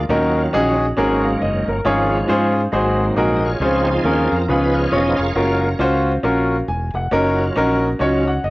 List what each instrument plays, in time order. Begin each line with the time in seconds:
0.09 fingered electric bass D#2, grand piano D#3 C#4 D#4 F#4 A#4, tonewheel organ F#3 C#4 F4
0.53 fingered electric bass A#1, grand piano C#4 D#4 F#4 G#4
0.97 fingered electric bass G#1, grand piano G#2 C#4 F#4 G#4 A#4, tonewheel organ F#3 A#3 C#4
1.24 grand piano F5
1.42 fingered electric bass F#1, grand piano D#5
1.68 fingered electric bass G1, grand piano A#4
1.84 fingered electric bass G#1, grand piano G#2 C#4 F4 G#4 C#5, tonewheel organ F3 G#3 C#4
2.28 fingered electric bass G#2, grand piano C#4 F4 G#4 C5
2.72 fingered electric bass G#1, grand piano G#2 D#4 F#4 G#4 C5, tonewheel organ F#3 A#3 C4
3.16 fingered electric bass A#1, grand piano D#4 F#4 G#4 A#4
3.36 tonewheel organ D#5
3.45 tonewheel organ F4 G#4 C#5
3.60 fingered electric bass C#2, grand piano C#3 C#4 F4 G#4 C5, tonewheel organ F3 C4 D#4
3.89 tonewheel organ C4 F4 G#4
4.04 fingered electric bass D#2, grand piano C#4 F4 G#4 A#4
4.32 fingered electric bass F2, tonewheel organ A#4
4.48 fingered electric bass C#2, grand piano C#3 C#4 F4 G#4 B4, tonewheel organ F3 B3 D#4 F4 G#4 B4
4.74 tonewheel organ C#5
4.92 fingered electric bass E1, grand piano C#4 F4 G#4 C#5, tonewheel organ D#5
5.16 fingered electric bass F1, tonewheel organ A#4 C#5 F5
5.35 fingered electric bass F#1, tonewheel organ G#3 A#3 F4, grand piano C#4 F4 F#4 A#4
5.79 fingered electric bass C#2, grand piano C#4 F4 F#4 C5
6.23 fingered electric bass A#1, grand piano C#4 F4 F#4 A#4
6.68 fingered electric bass E1, grand piano G#5
6.94 fingered electric bass F1, grand piano F#5
7.11 fingered electric bass F#1, tonewheel organ F#3 C#4 F4, grand piano C#4 D#4 F#4 A#4
7.56 fingered electric bass A#1, grand piano C#4 D#4 F#4 A#4
7.99 fingered electric bass C#2, tonewheel organ F#3 C#4 F4, grand piano C#4 D#4 F#4 C#5
8.28 grand piano F#5
8.44 fingered electric bass F#1, grand piano D#5